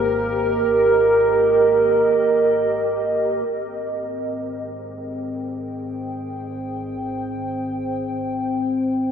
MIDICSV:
0, 0, Header, 1, 3, 480
1, 0, Start_track
1, 0, Tempo, 500000
1, 8752, End_track
2, 0, Start_track
2, 0, Title_t, "Ambient pad"
2, 0, Program_c, 0, 92
2, 0, Note_on_c, 0, 58, 99
2, 0, Note_on_c, 0, 67, 76
2, 0, Note_on_c, 0, 70, 97
2, 26, Note_on_c, 0, 75, 62
2, 3339, Note_off_c, 0, 67, 0
2, 3341, Note_off_c, 0, 58, 0
2, 3343, Note_on_c, 0, 60, 78
2, 3745, Note_on_c, 0, 72, 76
2, 4015, Note_on_c, 0, 79, 96
2, 4231, Note_on_c, 0, 68, 81
2, 4573, Note_off_c, 0, 70, 0
2, 4729, Note_off_c, 0, 75, 0
2, 8752, Note_off_c, 0, 60, 0
2, 8752, Note_off_c, 0, 68, 0
2, 8752, Note_off_c, 0, 72, 0
2, 8752, Note_off_c, 0, 79, 0
2, 8752, End_track
3, 0, Start_track
3, 0, Title_t, "Double bass section"
3, 0, Program_c, 1, 48
3, 0, Note_on_c, 1, 32, 80
3, 3301, Note_off_c, 1, 32, 0
3, 3341, Note_on_c, 1, 32, 73
3, 8752, Note_off_c, 1, 32, 0
3, 8752, End_track
0, 0, End_of_file